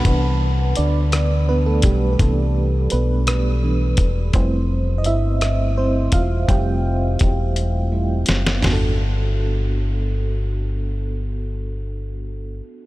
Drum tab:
HH |x---x-x---x-|x---x-x---x-|x---x-x---x-|x---x-x---x-|
SD |------r-----|------r-----|------r-----|----------oo|
FT |------------|------------|------------|------------|
BD |o---------o-|o---------o-|o---------o-|o---o-------|

HH |o-----------|------------|
SD |o-----------|------------|
FT |o-----------|------------|
BD |------------|------------|